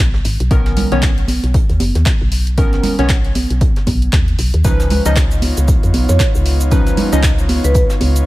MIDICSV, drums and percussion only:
0, 0, Header, 1, 2, 480
1, 0, Start_track
1, 0, Tempo, 517241
1, 472, Time_signature, 4, 2, 24, 8
1, 7666, End_track
2, 0, Start_track
2, 0, Title_t, "Drums"
2, 128, Note_on_c, 9, 38, 55
2, 221, Note_off_c, 9, 38, 0
2, 227, Note_on_c, 9, 42, 64
2, 232, Note_on_c, 9, 46, 106
2, 320, Note_off_c, 9, 42, 0
2, 325, Note_off_c, 9, 46, 0
2, 373, Note_on_c, 9, 42, 51
2, 466, Note_off_c, 9, 42, 0
2, 470, Note_on_c, 9, 42, 82
2, 472, Note_off_c, 9, 42, 0
2, 472, Note_on_c, 9, 36, 118
2, 472, Note_on_c, 9, 42, 62
2, 564, Note_off_c, 9, 36, 0
2, 564, Note_off_c, 9, 42, 0
2, 611, Note_on_c, 9, 38, 55
2, 613, Note_on_c, 9, 42, 34
2, 704, Note_off_c, 9, 38, 0
2, 706, Note_off_c, 9, 42, 0
2, 712, Note_on_c, 9, 46, 106
2, 714, Note_on_c, 9, 42, 63
2, 714, Note_on_c, 9, 64, 84
2, 804, Note_off_c, 9, 46, 0
2, 807, Note_off_c, 9, 42, 0
2, 807, Note_off_c, 9, 64, 0
2, 852, Note_on_c, 9, 42, 50
2, 945, Note_off_c, 9, 42, 0
2, 951, Note_on_c, 9, 42, 61
2, 952, Note_on_c, 9, 36, 118
2, 952, Note_on_c, 9, 39, 118
2, 953, Note_on_c, 9, 38, 110
2, 955, Note_off_c, 9, 42, 0
2, 955, Note_on_c, 9, 42, 81
2, 1045, Note_off_c, 9, 36, 0
2, 1045, Note_off_c, 9, 39, 0
2, 1046, Note_off_c, 9, 38, 0
2, 1048, Note_off_c, 9, 42, 0
2, 1092, Note_on_c, 9, 42, 38
2, 1093, Note_off_c, 9, 42, 0
2, 1093, Note_on_c, 9, 42, 33
2, 1185, Note_on_c, 9, 63, 87
2, 1186, Note_off_c, 9, 42, 0
2, 1192, Note_on_c, 9, 42, 59
2, 1192, Note_on_c, 9, 46, 105
2, 1278, Note_off_c, 9, 63, 0
2, 1284, Note_off_c, 9, 42, 0
2, 1284, Note_off_c, 9, 46, 0
2, 1333, Note_on_c, 9, 42, 50
2, 1340, Note_off_c, 9, 42, 0
2, 1340, Note_on_c, 9, 42, 39
2, 1431, Note_off_c, 9, 42, 0
2, 1431, Note_on_c, 9, 42, 59
2, 1432, Note_on_c, 9, 36, 113
2, 1433, Note_off_c, 9, 42, 0
2, 1433, Note_on_c, 9, 42, 85
2, 1524, Note_off_c, 9, 36, 0
2, 1526, Note_off_c, 9, 42, 0
2, 1573, Note_on_c, 9, 42, 34
2, 1578, Note_off_c, 9, 42, 0
2, 1578, Note_on_c, 9, 42, 47
2, 1669, Note_off_c, 9, 42, 0
2, 1669, Note_on_c, 9, 42, 70
2, 1669, Note_on_c, 9, 63, 90
2, 1671, Note_on_c, 9, 46, 107
2, 1762, Note_off_c, 9, 42, 0
2, 1762, Note_off_c, 9, 63, 0
2, 1764, Note_off_c, 9, 46, 0
2, 1812, Note_on_c, 9, 42, 50
2, 1814, Note_on_c, 9, 38, 49
2, 1905, Note_off_c, 9, 42, 0
2, 1907, Note_off_c, 9, 38, 0
2, 1908, Note_on_c, 9, 38, 103
2, 1909, Note_on_c, 9, 42, 78
2, 1911, Note_off_c, 9, 42, 0
2, 1911, Note_on_c, 9, 42, 61
2, 1912, Note_on_c, 9, 36, 120
2, 1912, Note_on_c, 9, 39, 116
2, 2001, Note_off_c, 9, 38, 0
2, 2004, Note_off_c, 9, 36, 0
2, 2004, Note_off_c, 9, 39, 0
2, 2004, Note_off_c, 9, 42, 0
2, 2150, Note_on_c, 9, 46, 109
2, 2154, Note_on_c, 9, 42, 60
2, 2243, Note_off_c, 9, 46, 0
2, 2246, Note_off_c, 9, 42, 0
2, 2292, Note_on_c, 9, 42, 49
2, 2385, Note_off_c, 9, 42, 0
2, 2390, Note_on_c, 9, 42, 91
2, 2391, Note_off_c, 9, 42, 0
2, 2391, Note_on_c, 9, 42, 59
2, 2392, Note_on_c, 9, 36, 116
2, 2483, Note_off_c, 9, 42, 0
2, 2484, Note_off_c, 9, 36, 0
2, 2532, Note_on_c, 9, 42, 33
2, 2537, Note_on_c, 9, 38, 41
2, 2625, Note_off_c, 9, 42, 0
2, 2627, Note_on_c, 9, 64, 81
2, 2630, Note_off_c, 9, 38, 0
2, 2631, Note_on_c, 9, 46, 106
2, 2641, Note_on_c, 9, 42, 67
2, 2720, Note_off_c, 9, 64, 0
2, 2723, Note_off_c, 9, 46, 0
2, 2734, Note_off_c, 9, 42, 0
2, 2772, Note_on_c, 9, 42, 48
2, 2865, Note_off_c, 9, 42, 0
2, 2868, Note_on_c, 9, 42, 85
2, 2871, Note_off_c, 9, 42, 0
2, 2871, Note_on_c, 9, 36, 115
2, 2871, Note_on_c, 9, 42, 59
2, 2872, Note_on_c, 9, 39, 111
2, 2873, Note_on_c, 9, 38, 113
2, 2963, Note_off_c, 9, 42, 0
2, 2964, Note_off_c, 9, 36, 0
2, 2964, Note_off_c, 9, 39, 0
2, 2966, Note_off_c, 9, 38, 0
2, 3012, Note_on_c, 9, 42, 33
2, 3105, Note_off_c, 9, 42, 0
2, 3107, Note_on_c, 9, 42, 62
2, 3111, Note_on_c, 9, 46, 104
2, 3113, Note_on_c, 9, 63, 83
2, 3200, Note_off_c, 9, 42, 0
2, 3204, Note_off_c, 9, 46, 0
2, 3206, Note_off_c, 9, 63, 0
2, 3252, Note_on_c, 9, 42, 49
2, 3345, Note_off_c, 9, 42, 0
2, 3349, Note_on_c, 9, 42, 77
2, 3351, Note_off_c, 9, 42, 0
2, 3351, Note_on_c, 9, 36, 117
2, 3351, Note_on_c, 9, 42, 61
2, 3444, Note_off_c, 9, 36, 0
2, 3444, Note_off_c, 9, 42, 0
2, 3492, Note_on_c, 9, 42, 34
2, 3495, Note_on_c, 9, 38, 46
2, 3585, Note_off_c, 9, 42, 0
2, 3588, Note_off_c, 9, 38, 0
2, 3588, Note_on_c, 9, 63, 94
2, 3591, Note_on_c, 9, 36, 62
2, 3591, Note_on_c, 9, 46, 104
2, 3597, Note_on_c, 9, 42, 61
2, 3681, Note_off_c, 9, 63, 0
2, 3684, Note_off_c, 9, 36, 0
2, 3684, Note_off_c, 9, 46, 0
2, 3689, Note_off_c, 9, 42, 0
2, 3732, Note_on_c, 9, 42, 48
2, 3825, Note_off_c, 9, 42, 0
2, 3831, Note_on_c, 9, 36, 120
2, 3831, Note_on_c, 9, 39, 111
2, 3831, Note_on_c, 9, 42, 61
2, 3923, Note_off_c, 9, 42, 0
2, 3924, Note_off_c, 9, 36, 0
2, 3924, Note_off_c, 9, 39, 0
2, 3972, Note_on_c, 9, 42, 33
2, 4064, Note_off_c, 9, 42, 0
2, 4070, Note_on_c, 9, 46, 104
2, 4074, Note_on_c, 9, 42, 65
2, 4163, Note_off_c, 9, 46, 0
2, 4166, Note_off_c, 9, 42, 0
2, 4212, Note_on_c, 9, 42, 47
2, 4305, Note_off_c, 9, 42, 0
2, 4309, Note_on_c, 9, 69, 57
2, 4311, Note_on_c, 9, 36, 109
2, 4311, Note_on_c, 9, 42, 60
2, 4314, Note_off_c, 9, 42, 0
2, 4314, Note_on_c, 9, 42, 85
2, 4402, Note_off_c, 9, 69, 0
2, 4404, Note_off_c, 9, 36, 0
2, 4407, Note_off_c, 9, 42, 0
2, 4452, Note_on_c, 9, 42, 33
2, 4453, Note_on_c, 9, 38, 51
2, 4455, Note_on_c, 9, 69, 39
2, 4545, Note_off_c, 9, 42, 0
2, 4546, Note_off_c, 9, 38, 0
2, 4548, Note_off_c, 9, 69, 0
2, 4551, Note_on_c, 9, 46, 99
2, 4553, Note_on_c, 9, 42, 67
2, 4558, Note_on_c, 9, 64, 86
2, 4644, Note_off_c, 9, 46, 0
2, 4646, Note_off_c, 9, 42, 0
2, 4651, Note_off_c, 9, 64, 0
2, 4691, Note_on_c, 9, 69, 74
2, 4692, Note_on_c, 9, 42, 48
2, 4784, Note_off_c, 9, 69, 0
2, 4785, Note_off_c, 9, 42, 0
2, 4789, Note_on_c, 9, 42, 89
2, 4790, Note_on_c, 9, 38, 110
2, 4791, Note_off_c, 9, 42, 0
2, 4791, Note_on_c, 9, 36, 115
2, 4791, Note_on_c, 9, 42, 62
2, 4792, Note_on_c, 9, 39, 110
2, 4796, Note_on_c, 9, 69, 64
2, 4882, Note_off_c, 9, 38, 0
2, 4884, Note_off_c, 9, 36, 0
2, 4884, Note_off_c, 9, 42, 0
2, 4885, Note_off_c, 9, 39, 0
2, 4889, Note_off_c, 9, 69, 0
2, 4928, Note_on_c, 9, 69, 39
2, 4930, Note_on_c, 9, 42, 44
2, 4932, Note_off_c, 9, 42, 0
2, 4932, Note_on_c, 9, 42, 33
2, 5020, Note_off_c, 9, 69, 0
2, 5025, Note_off_c, 9, 42, 0
2, 5029, Note_on_c, 9, 42, 67
2, 5029, Note_on_c, 9, 63, 85
2, 5031, Note_on_c, 9, 46, 104
2, 5121, Note_off_c, 9, 63, 0
2, 5122, Note_off_c, 9, 42, 0
2, 5124, Note_off_c, 9, 46, 0
2, 5172, Note_on_c, 9, 42, 49
2, 5172, Note_on_c, 9, 69, 76
2, 5179, Note_off_c, 9, 42, 0
2, 5179, Note_on_c, 9, 42, 38
2, 5265, Note_off_c, 9, 69, 0
2, 5271, Note_off_c, 9, 42, 0
2, 5271, Note_on_c, 9, 42, 60
2, 5271, Note_on_c, 9, 69, 66
2, 5272, Note_on_c, 9, 36, 115
2, 5279, Note_off_c, 9, 42, 0
2, 5279, Note_on_c, 9, 42, 80
2, 5364, Note_off_c, 9, 36, 0
2, 5364, Note_off_c, 9, 69, 0
2, 5371, Note_off_c, 9, 42, 0
2, 5413, Note_on_c, 9, 42, 40
2, 5420, Note_on_c, 9, 69, 38
2, 5506, Note_off_c, 9, 42, 0
2, 5511, Note_on_c, 9, 46, 105
2, 5512, Note_off_c, 9, 69, 0
2, 5512, Note_on_c, 9, 42, 68
2, 5514, Note_on_c, 9, 63, 86
2, 5604, Note_off_c, 9, 46, 0
2, 5605, Note_off_c, 9, 42, 0
2, 5607, Note_off_c, 9, 63, 0
2, 5649, Note_on_c, 9, 38, 50
2, 5651, Note_on_c, 9, 69, 76
2, 5653, Note_on_c, 9, 42, 49
2, 5742, Note_off_c, 9, 38, 0
2, 5744, Note_off_c, 9, 69, 0
2, 5745, Note_off_c, 9, 42, 0
2, 5745, Note_on_c, 9, 42, 84
2, 5750, Note_on_c, 9, 38, 113
2, 5751, Note_on_c, 9, 36, 117
2, 5751, Note_on_c, 9, 69, 60
2, 5752, Note_off_c, 9, 42, 0
2, 5752, Note_on_c, 9, 42, 62
2, 5753, Note_on_c, 9, 39, 107
2, 5843, Note_off_c, 9, 38, 0
2, 5844, Note_off_c, 9, 36, 0
2, 5844, Note_off_c, 9, 69, 0
2, 5845, Note_off_c, 9, 42, 0
2, 5846, Note_off_c, 9, 39, 0
2, 5891, Note_on_c, 9, 69, 38
2, 5984, Note_off_c, 9, 69, 0
2, 5991, Note_on_c, 9, 42, 59
2, 5991, Note_on_c, 9, 46, 105
2, 6084, Note_off_c, 9, 42, 0
2, 6084, Note_off_c, 9, 46, 0
2, 6130, Note_on_c, 9, 69, 69
2, 6132, Note_on_c, 9, 42, 47
2, 6223, Note_off_c, 9, 69, 0
2, 6225, Note_off_c, 9, 42, 0
2, 6231, Note_on_c, 9, 42, 63
2, 6231, Note_on_c, 9, 69, 58
2, 6232, Note_off_c, 9, 42, 0
2, 6232, Note_on_c, 9, 36, 109
2, 6232, Note_on_c, 9, 42, 85
2, 6324, Note_off_c, 9, 36, 0
2, 6324, Note_off_c, 9, 42, 0
2, 6324, Note_off_c, 9, 69, 0
2, 6367, Note_on_c, 9, 38, 39
2, 6372, Note_on_c, 9, 42, 34
2, 6373, Note_on_c, 9, 69, 33
2, 6460, Note_off_c, 9, 38, 0
2, 6465, Note_off_c, 9, 42, 0
2, 6466, Note_off_c, 9, 69, 0
2, 6468, Note_on_c, 9, 42, 72
2, 6471, Note_on_c, 9, 46, 96
2, 6471, Note_on_c, 9, 64, 89
2, 6561, Note_off_c, 9, 42, 0
2, 6564, Note_off_c, 9, 46, 0
2, 6564, Note_off_c, 9, 64, 0
2, 6613, Note_on_c, 9, 42, 49
2, 6614, Note_on_c, 9, 69, 79
2, 6705, Note_on_c, 9, 38, 104
2, 6706, Note_off_c, 9, 42, 0
2, 6707, Note_off_c, 9, 69, 0
2, 6711, Note_on_c, 9, 36, 111
2, 6712, Note_on_c, 9, 42, 62
2, 6713, Note_on_c, 9, 39, 109
2, 6716, Note_off_c, 9, 42, 0
2, 6716, Note_on_c, 9, 42, 80
2, 6717, Note_on_c, 9, 69, 58
2, 6798, Note_off_c, 9, 38, 0
2, 6804, Note_off_c, 9, 36, 0
2, 6805, Note_off_c, 9, 39, 0
2, 6809, Note_off_c, 9, 42, 0
2, 6810, Note_off_c, 9, 69, 0
2, 6853, Note_on_c, 9, 42, 34
2, 6856, Note_on_c, 9, 69, 35
2, 6946, Note_off_c, 9, 42, 0
2, 6949, Note_off_c, 9, 69, 0
2, 6951, Note_on_c, 9, 46, 98
2, 6951, Note_on_c, 9, 63, 92
2, 6954, Note_on_c, 9, 42, 63
2, 7044, Note_off_c, 9, 46, 0
2, 7044, Note_off_c, 9, 63, 0
2, 7046, Note_off_c, 9, 42, 0
2, 7093, Note_on_c, 9, 42, 50
2, 7095, Note_on_c, 9, 69, 78
2, 7185, Note_off_c, 9, 42, 0
2, 7186, Note_on_c, 9, 42, 86
2, 7188, Note_off_c, 9, 69, 0
2, 7191, Note_off_c, 9, 42, 0
2, 7191, Note_on_c, 9, 36, 108
2, 7191, Note_on_c, 9, 42, 61
2, 7196, Note_on_c, 9, 69, 58
2, 7284, Note_off_c, 9, 36, 0
2, 7284, Note_off_c, 9, 42, 0
2, 7289, Note_off_c, 9, 69, 0
2, 7328, Note_on_c, 9, 38, 54
2, 7331, Note_on_c, 9, 69, 36
2, 7333, Note_on_c, 9, 42, 35
2, 7421, Note_off_c, 9, 38, 0
2, 7423, Note_off_c, 9, 69, 0
2, 7425, Note_off_c, 9, 42, 0
2, 7429, Note_on_c, 9, 63, 87
2, 7432, Note_on_c, 9, 46, 102
2, 7434, Note_on_c, 9, 42, 72
2, 7521, Note_off_c, 9, 63, 0
2, 7524, Note_off_c, 9, 46, 0
2, 7527, Note_off_c, 9, 42, 0
2, 7572, Note_on_c, 9, 42, 51
2, 7573, Note_on_c, 9, 69, 69
2, 7665, Note_off_c, 9, 42, 0
2, 7665, Note_off_c, 9, 69, 0
2, 7666, End_track
0, 0, End_of_file